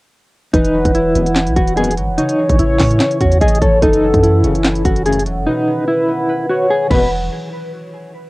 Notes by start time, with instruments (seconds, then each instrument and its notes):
0.53 808-style bass E1, harp E3, clean electric guitar D#4, soft synth lead B4, kick, closed hi-hat
0.65 closed hi-hat
0.74 harp F#3
0.85 808-style bass E1, kick, closed hi-hat
0.95 clean electric guitar E4, closed hi-hat
1.15 808-style bass E1, brass ensemble G#1 F#2 B2, harp B3, closed hi-hat
1.26 closed hi-hat
1.36 harp E4, snare, clap, closed hi-hat
1.47 808-style bass B1, closed hi-hat
1.56 808-style bass E1, harp B3, clean electric guitar F#4, kick, closed hi-hat
1.68 closed hi-hat
1.77 brass ensemble G#1 F#2 B2, harp G#3, clean electric guitar G#4, closed hi-hat
1.84 closed hi-hat
1.91 closed hi-hat
1.97 808-style bass G#1, harp F#3, closed hi-hat
2.08 808-style bass E1
2.18 harp C#3, clean electric guitar D#4, soft synth lead C#5, closed hi-hat
2.29 closed hi-hat
2.39 harp E3
2.50 808-style bass A1, kick, closed hi-hat
2.59 808-style bass A1, clean electric guitar E4, closed hi-hat
2.79 808-style bass A2, harp C#4, kick, snare, clap, open hi-hat
2.91 closed hi-hat
3.00 harp C#5, snare, clap, closed hi-hat
3.11 closed hi-hat
3.21 808-style bass E2, harp C#4, clean electric guitar F#4, kick, closed hi-hat
3.32 closed hi-hat
3.41 808-style bass A1, harp A3, clean electric guitar G#4, soft synth lead D#5, kick, closed hi-hat
3.48 closed hi-hat
3.55 closed hi-hat
3.62 808-style bass A1, harp E3, clean electric guitar A4, soft synth lead C#5, kick, closed hi-hat
3.82 808-style bass F#1, harp E3, clean electric guitar D#4, soft synth lead A4, kick, closed hi-hat
3.93 closed hi-hat
4.03 harp F#3
4.14 808-style bass F#2, kick, closed hi-hat
4.23 clean electric guitar E4, closed hi-hat
4.44 808-style bass F#1, brass ensemble A1 F#2 C#3, harp C#4, closed hi-hat
4.55 closed hi-hat
4.64 harp E4, snare, clap, closed hi-hat
4.75 closed hi-hat
4.85 808-style bass F#1, harp C#4, clean electric guitar F#4, kick, closed hi-hat
4.96 closed hi-hat
5.06 brass ensemble A1 F#2 C#3, harp A3, clean electric guitar G#4, closed hi-hat
5.13 closed hi-hat
5.19 closed hi-hat
5.26 808-style bass E1, harp F#3, closed hi-hat
5.37 808-style bass F#1
5.47 harp B2, clean electric guitar D#4, soft synth lead B4
5.67 harp D#3
5.88 clean electric guitar E4
6.08 harp B3
6.29 harp B4
6.49 harp B3, clean electric guitar F#4, soft synth lead C#5
6.70 harp G#3, clean electric guitar G#4
6.87 harp E3 F#3, clean electric guitar B4, soft synth lead B4
6.91 808-style bass E1, brass ensemble G#1 F#2 B2, harp G#3, kick, crash
6.95 harp B3